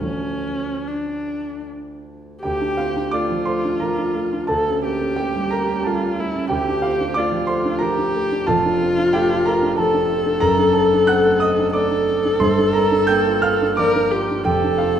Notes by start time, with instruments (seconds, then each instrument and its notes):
0.00 grand piano D2 F3 A3 D4, viola C#4
0.87 viola D4
2.42 grand piano D2 G4 G5, viola G4
2.61 grand piano D4
2.77 grand piano C4 F4 F5
2.97 grand piano D4
3.11 grand piano A3 D5 D6, viola F4
3.30 grand piano F3
3.45 grand piano A3 C5 C6
3.65 grand piano D4
3.80 grand piano F3 A#4 A#5
3.98 grand piano D4
4.15 grand piano A3
4.33 grand piano D4
4.47 grand piano D2 A4 A5, viola A4
4.68 grand piano C#4
4.85 grand piano A#3, viola G4
5.02 grand piano C#4
5.16 grand piano A3 G4 G5
5.36 grand piano G3
5.51 grand piano A3 A#4 A#5
5.69 grand piano C#4
5.83 grand piano G3 A4 A5, viola F4
6.02 grand piano C#4
6.19 grand piano A3, viola E4
6.35 grand piano C#4
6.49 grand piano D2 G4 G5, viola G4
6.68 grand piano D4
6.82 grand piano C4 F4 F5
7.00 grand piano D4
7.14 grand piano A3 D5 D6, viola F4
7.32 grand piano F3
7.47 grand piano A3 C5 C6
7.65 grand piano D4
7.79 grand piano F3 A#4 A#5, viola G4
7.98 grand piano D4
8.15 grand piano A3
8.32 grand piano D4
8.47 grand piano F1 F2 A4 A5, viola F4
8.65 grand piano D4
8.82 grand piano C4
8.98 grand piano D4
9.13 grand piano A3 G4 G5
9.30 grand piano F4
9.45 grand piano A3 A#4 A#5
9.62 grand piano D4
9.77 grand piano F3 A4 A5, viola A4
9.94 grand piano D4
10.10 grand piano F4
10.26 grand piano D4
10.40 grand piano F#1 F#2 A#4 A#5
10.58 grand piano D4
10.73 grand piano C4 A4 A5
10.93 grand piano D4
11.07 grand piano C4 F#5 F#6
11.25 grand piano A3
11.40 grand piano C4 D#5 D#6
11.58 grand piano D4
11.73 grand piano A3 D5 D6, viola A4
11.91 grand piano D4
12.08 grand piano C4
12.25 grand piano D4
12.40 grand piano G1 G2 C5 C6
12.58 grand piano D4
12.73 grand piano C4 A#4 A#5
12.92 grand piano D4
13.07 grand piano A#3 G5 G6
13.27 grand piano F4
13.42 grand piano A#3 F5 F6
13.62 grand piano D4
13.77 grand piano F3 D5 D6, viola A#4
13.96 grand piano D4
14.11 grand piano F4, viola G4
14.31 grand piano D4
14.45 grand piano F1 F2 G4 G5, viola A4
14.64 grand piano D4
14.78 grand piano C4 F4 F5